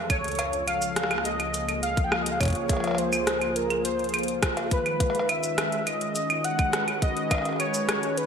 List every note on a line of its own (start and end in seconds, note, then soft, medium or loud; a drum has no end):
0.00 4.71 A4 medium
0.10 4.71 C#2 medium
0.10 0.63 C#5 loud
0.10 kick loud
0.10 closed hi-hat medium
0.10 claves medium
0.24 4.71 F3 medium
0.24 closed hi-hat soft
0.28 closed hi-hat soft
0.32 closed hi-hat soft
0.35 closed hi-hat soft
0.39 6.56 F4 medium
0.39 closed hi-hat medium
0.39 cowbell medium
0.39 claves soft
0.53 closed hi-hat soft
0.67 1.21 F5 loud
0.67 closed hi-hat medium
0.67 claves medium
0.82 closed hi-hat soft
0.82 shaker medium
0.96 4.71 A#3 medium
0.96 cross-stick loud
0.96 closed hi-hat medium
1.03 cross-stick loud
1.11 cross-stick medium
1.11 closed hi-hat soft
1.11 claves medium
1.18 cross-stick medium
1.25 1.79 D#5 loud
1.25 closed hi-hat medium
1.40 5.46 G#4 loud
1.40 closed hi-hat soft
1.40 claves medium
1.54 closed hi-hat medium
1.54 shaker medium
1.69 closed hi-hat soft
1.69 claves medium
1.83 2.06 F5 loud
1.83 closed hi-hat medium
1.97 kick loud
1.97 closed hi-hat soft
2.04 2.15 G5 medium
2.12 2.24 F5 loud
2.12 cross-stick loud
2.12 claves medium
2.22 2.33 D#5 medium
2.22 closed hi-hat loud
2.31 2.42 F5 medium
2.40 3.00 C#5 loud
2.40 kick loud
2.40 closed hi-hat medium
2.40 claves soft
2.43 kick medium
2.43 closed hi-hat medium
2.45 kick medium
2.45 closed hi-hat soft
2.48 kick medium
2.50 kick soft
2.50 closed hi-hat soft
2.53 kick soft
2.53 closed hi-hat soft
2.55 closed hi-hat soft
2.69 kick loud
2.69 closed hi-hat medium
2.69 cowbell soft
2.73 cowbell soft
2.77 cowbell soft
2.80 closed hi-hat soft
2.80 cowbell medium
2.84 cowbell medium
2.87 cowbell medium
2.91 cowbell medium
2.95 3.57 C5 loud
2.95 closed hi-hat medium
2.95 cowbell medium
3.13 closed hi-hat soft
3.13 claves medium
3.13 shaker medium
3.27 cross-stick loud
3.27 closed hi-hat medium
3.41 closed hi-hat soft
3.41 claves medium
3.56 3.84 A#4 medium
3.56 closed hi-hat medium
3.70 closed hi-hat soft
3.70 claves medium
3.85 4.38 C5 medium
3.85 closed hi-hat medium
3.99 closed hi-hat soft
4.04 closed hi-hat soft
4.09 closed hi-hat soft
4.14 closed hi-hat medium
4.14 claves medium
4.19 closed hi-hat soft
4.23 closed hi-hat soft
4.28 closed hi-hat soft
4.43 kick loud
4.43 cross-stick loud
4.43 closed hi-hat medium
4.43 claves medium
4.57 closed hi-hat soft
4.57 cowbell medium
4.71 8.26 D#3 medium
4.71 5.31 B4 loud
4.71 kick loud
4.71 closed hi-hat medium
4.79 8.26 G#3 medium
4.86 closed hi-hat soft
4.86 claves medium
5.00 kick loud
5.00 closed hi-hat medium
5.00 cowbell soft
5.10 cowbell medium
5.15 closed hi-hat soft
5.19 cowbell medium
5.29 8.26 C#4 medium
5.29 5.88 E5 loud
5.29 closed hi-hat medium
5.29 claves medium
5.43 closed hi-hat soft
5.43 shaker medium
5.58 cross-stick loud
5.58 closed hi-hat medium
5.58 claves soft
5.72 closed hi-hat soft
5.87 6.46 D#5 loud
5.87 closed hi-hat medium
5.87 claves soft
6.01 closed hi-hat soft
6.16 closed hi-hat medium
6.16 shaker medium
6.29 8.26 F#4 medium
6.29 closed hi-hat soft
6.29 claves medium
6.44 7.02 F#5 loud
6.44 closed hi-hat medium
6.55 8.26 B4 medium
6.55 kick loud
6.55 closed hi-hat soft
6.55 claves medium
6.73 cross-stick loud
6.73 closed hi-hat medium
6.88 closed hi-hat soft
6.88 claves medium
7.02 7.56 D#5 loud
7.02 kick loud
7.02 closed hi-hat medium
7.17 closed hi-hat soft
7.31 kick loud
7.31 closed hi-hat medium
7.31 cowbell medium
7.31 claves medium
7.35 cowbell medium
7.38 cowbell medium
7.42 closed hi-hat soft
7.42 cowbell soft
7.45 cowbell soft
7.49 cowbell soft
7.53 cowbell soft
7.56 8.19 C#5 loud
7.56 closed hi-hat medium
7.56 cowbell soft
7.56 claves medium
7.74 closed hi-hat soft
7.74 shaker medium
7.89 cross-stick loud
7.89 closed hi-hat medium
7.89 claves medium
8.03 closed hi-hat soft
8.17 8.26 B4 medium
8.17 closed hi-hat medium